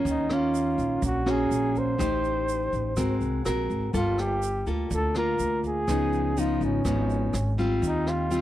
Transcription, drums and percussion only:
0.05 kick medium
0.05 closed hi-hat soft
0.05 shaker medium
0.29 cross-stick medium
0.29 closed hi-hat soft
0.29 shaker soft
0.53 closed hi-hat soft
0.53 shaker medium
0.78 kick soft
0.78 closed hi-hat soft
0.78 shaker soft
1.02 kick soft
1.02 closed hi-hat soft
1.02 shaker medium
1.26 cross-stick medium
1.26 closed hi-hat soft
1.26 shaker soft
1.51 closed hi-hat soft
1.51 shaker medium
1.75 kick soft
1.75 closed hi-hat soft
1.75 shaker soft
1.99 kick medium
1.99 cross-stick medium
1.99 closed hi-hat soft
1.99 shaker medium
2.23 closed hi-hat soft
2.23 shaker soft
2.48 closed hi-hat soft
2.48 shaker medium
2.72 kick soft
2.72 closed hi-hat soft
2.72 shaker soft
2.96 kick medium
2.96 cross-stick medium
2.96 closed hi-hat soft
2.96 shaker medium
3.21 closed hi-hat soft
3.21 shaker soft
3.45 cross-stick medium
3.45 closed hi-hat soft
3.45 shaker medium
3.70 kick soft
3.70 closed hi-hat soft
3.70 shaker soft
3.93 kick soft
3.93 closed hi-hat soft
3.93 shaker medium
4.18 cross-stick medium
4.18 closed hi-hat soft
4.18 shaker soft
4.42 closed hi-hat soft
4.42 shaker medium
4.66 kick soft
4.66 closed hi-hat soft
4.66 shaker soft
4.90 kick medium
4.90 closed hi-hat soft
4.90 shaker medium
5.14 cross-stick medium
5.14 closed hi-hat soft
5.14 shaker soft
5.39 closed hi-hat soft
5.39 shaker medium
5.64 kick soft
5.64 closed hi-hat soft
5.64 shaker soft
5.88 kick medium
5.88 cross-stick medium
5.88 closed hi-hat soft
5.88 shaker medium
6.12 closed hi-hat soft
6.12 shaker soft
6.36 closed hi-hat soft
6.36 shaker medium
6.60 kick soft
6.60 closed hi-hat soft
6.60 shaker soft
6.85 kick medium
6.85 cross-stick medium
6.85 closed hi-hat soft
6.85 shaker medium
7.09 closed hi-hat soft
7.09 shaker soft
7.33 cross-stick medium
7.33 closed hi-hat soft
7.33 shaker medium
7.58 kick soft
7.58 closed hi-hat soft
7.58 shaker soft
7.82 kick soft
7.82 closed hi-hat soft
7.82 shaker medium
8.06 cross-stick medium
8.06 closed hi-hat soft
8.06 shaker soft
8.31 closed hi-hat soft
8.31 shaker medium

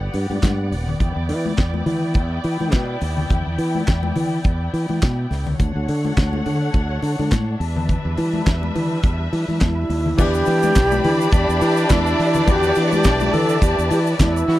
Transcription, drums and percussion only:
0.14 open hi-hat medium
0.14 muted conga soft
0.31 high conga medium
0.43 kick loud
0.43 snare loud
0.43 clap medium
0.43 closed hi-hat medium
0.43 muted conga soft
0.43 high conga medium
0.72 open hi-hat medium
0.88 low conga medium
1.00 kick medium
1.00 closed hi-hat medium
1.00 muted conga soft
1.00 low conga medium
1.29 open hi-hat medium
1.29 muted conga soft
1.46 high conga medium
1.57 kick loud
1.57 snare medium
1.57 clap medium
1.57 closed hi-hat medium
1.57 muted conga soft
1.74 high conga medium
1.86 open hi-hat medium
1.86 low conga medium
2.14 kick loud
2.14 closed hi-hat medium
2.14 muted conga soft
2.44 open hi-hat medium
2.60 high conga medium
2.72 kick loud
2.72 snare loud
2.72 clap medium
2.72 closed hi-hat medium
2.72 high conga medium
3.01 open hi-hat medium
3.01 muted conga soft
3.17 low conga medium
3.29 kick medium
3.29 closed hi-hat medium
3.29 muted conga soft
3.29 low conga medium
3.58 open hi-hat medium
3.75 high conga medium
3.87 kick loud
3.87 snare loud
3.87 clap medium
3.87 closed hi-hat medium
4.03 high conga medium
4.16 open hi-hat medium
4.16 muted conga soft
4.16 low conga medium
4.44 kick loud
4.44 closed hi-hat medium
4.44 muted conga soft
4.74 open hi-hat medium
4.89 high conga medium
5.01 kick loud
5.01 snare loud
5.01 clap medium
5.01 closed hi-hat medium
5.01 high conga medium
5.31 snare soft
5.31 open hi-hat medium
5.31 muted conga soft
5.46 low conga medium
5.59 kick medium
5.59 closed hi-hat soft
5.59 muted conga soft
5.59 low conga medium
5.88 open hi-hat medium
5.88 muted conga soft
6.05 high conga medium
6.17 kick loud
6.17 snare loud
6.17 clap medium
6.17 closed hi-hat medium
6.33 high conga medium
6.46 open hi-hat medium
6.46 muted conga soft
6.46 low conga medium
6.74 kick loud
6.74 closed hi-hat medium
7.02 open hi-hat medium
7.02 muted conga soft
7.20 high conga medium
7.31 kick loud
7.31 snare loud
7.31 clap medium
7.31 closed hi-hat medium
7.31 muted conga soft
7.31 high conga medium
7.61 open hi-hat medium
7.76 low conga medium
7.89 kick medium
7.89 closed hi-hat medium
7.89 muted conga soft
7.89 low conga medium
8.18 open hi-hat medium
8.18 muted conga soft
8.34 high conga medium
8.46 kick loud
8.46 snare medium
8.46 clap medium
8.46 closed hi-hat medium
8.46 muted conga soft
8.63 high conga medium
8.75 open hi-hat medium
8.75 low conga medium
9.03 kick loud
9.03 closed hi-hat medium
9.03 muted conga soft
9.33 open hi-hat medium
9.33 muted conga soft
9.50 high conga medium
9.61 kick loud
9.61 snare loud
9.61 clap medium
9.61 closed hi-hat medium
9.61 muted conga soft
9.61 high conga medium
9.90 open hi-hat medium
9.90 muted conga soft
10.06 low conga medium
10.18 kick loud
10.18 crash loud
10.18 muted conga soft
10.18 low conga medium
10.18 shaker medium
10.34 shaker medium
10.46 open hi-hat medium
10.46 muted conga soft
10.46 shaker medium
10.63 high conga medium
10.63 shaker medium
10.75 kick loud
10.75 snare loud
10.75 clap medium
10.75 closed hi-hat medium
10.75 muted conga soft
10.75 shaker medium
10.91 high conga medium
10.91 shaker medium
11.04 open hi-hat medium
11.04 muted conga soft
11.04 low conga medium
11.21 shaker medium
11.31 kick loud
11.31 closed hi-hat medium
11.31 muted conga soft
11.31 shaker medium
11.50 shaker medium
11.61 open hi-hat medium
11.61 muted conga soft
11.61 shaker medium
11.77 shaker medium
11.89 kick loud
11.89 snare loud
11.89 clap medium
11.89 closed hi-hat medium
11.89 muted conga soft
11.89 high conga medium
11.89 shaker medium
12.06 shaker medium
12.19 snare soft
12.19 open hi-hat medium
12.19 muted conga soft
12.34 low conga medium
12.34 shaker medium
12.47 kick loud
12.47 closed hi-hat medium
12.47 muted conga soft
12.47 low conga medium
12.47 shaker medium
12.63 shaker medium
12.75 open hi-hat medium
12.75 shaker medium
12.92 high conga medium
12.92 shaker soft
13.04 kick loud
13.04 snare loud
13.04 clap medium
13.04 closed hi-hat medium
13.04 muted conga soft
13.04 shaker medium
13.20 high conga medium
13.20 shaker soft
13.34 open hi-hat medium
13.34 muted conga soft
13.34 low conga medium
13.49 shaker medium
13.62 kick loud
13.62 closed hi-hat medium
13.62 shaker medium
13.79 shaker medium
13.91 open hi-hat medium
13.91 muted conga soft
13.91 shaker medium
14.07 shaker medium
14.19 kick loud
14.19 snare loud
14.19 clap medium
14.19 closed hi-hat medium
14.19 high conga medium
14.19 shaker medium
14.37 shaker medium
14.49 snare soft
14.49 open hi-hat medium

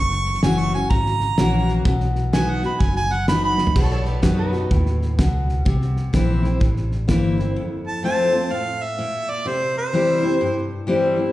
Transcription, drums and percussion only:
0.10 snare soft
0.25 snare soft
0.34 snare soft
0.43 snare loud
0.43 hi-hat pedal medium
0.73 snare soft
0.91 kick loud
0.91 snare soft
1.06 snare soft
1.20 snare soft
1.38 snare loud
1.38 hi-hat pedal medium
1.68 snare soft
1.85 kick loud
1.85 snare soft
2.00 snare soft
2.15 snare soft
2.33 snare loud
2.33 hi-hat pedal medium
2.63 snare soft
2.80 kick loud
2.80 snare soft
2.96 snare soft
3.10 snare soft
3.28 snare loud
3.28 hi-hat pedal medium
3.58 snare medium
3.67 floor tom medium
3.76 kick loud
3.76 snare soft
3.76 crash loud
3.91 snare soft
4.05 snare soft
4.23 kick medium
4.23 snare loud
4.23 hi-hat pedal medium
4.53 snare soft
4.71 kick loud
4.71 snare soft
4.86 snare soft
5.02 snare soft
5.19 kick medium
5.19 snare loud
5.19 hi-hat pedal medium
5.49 snare soft
5.66 kick loud
5.66 snare soft
5.82 snare soft
5.97 snare soft
6.14 kick medium
6.14 snare loud
6.14 hi-hat pedal medium
6.44 snare soft
6.61 kick loud
6.61 snare soft
6.76 snare soft
6.92 snare soft
7.09 kick medium
7.09 snare loud
7.09 hi-hat pedal medium
7.39 snare soft

